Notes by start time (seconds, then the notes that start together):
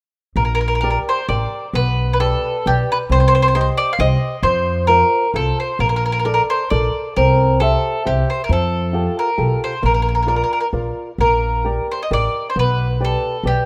0.36 A#1 A#3 A#4
0.45 A#4
0.55 A#4
0.61 A#4
0.68 A#4
0.75 A#4
0.81 G4 A#4 D5
0.90 A#4
1.09 C5
1.29 A1 G4 A#4 D5
1.73 B1 B3 B4
2.13 B4
2.20 G4 A4 B4 D5
2.66 B1 G4 B4 D5
2.92 B4
3.10 C2 C4 C5
3.20 C5
3.28 C5
3.35 C5
3.42 C5
3.48 C5
3.55 G4 C5 D#5
3.61 C5
3.77 D5
3.93 F5
3.99 C2 G4 C5 D#5
4.43 F2 F3 C5
4.87 F4 A#4 C5
5.34 C2 F4 A4 C5
5.60 C5
5.79 A#1 A#3 A#4
5.89 A#4
5.96 A#4
6.06 A#4
6.12 A#4
6.19 A#4
6.25 A4 A#4 D5
6.34 A#4
6.50 C5
6.70 A#1 A4 A#4 D5
7.17 C2 C4 A#4
7.60 G4 A4 C5 E5
8.05 C2 G4 C5 E5
8.30 C5
8.44 A#4
8.49 F2 F3 A4
8.93 F4 G4 A4
9.19 A#4
9.37 B1 F4 G4 A4
9.64 C5
9.82 A#1 A#3 A#4
9.94 A#4
10.02 A#4
10.09 A#4
10.15 A#4
10.23 F4 A#4
10.28 A#4 D5
10.36 A#4
10.44 A#4
10.53 A#4
10.60 A#4
10.73 A#1 F4 A#4 D5
11.18 A#1 A#3 A#4
11.64 G4 A#4 D5
11.92 C5
12.03 D#5
12.11 A1 G4 A#4 D5
12.50 C5
12.56 B1 B3 B4
13.00 G4 B4 D5
13.05 A4
13.43 B1 G4 B4 D5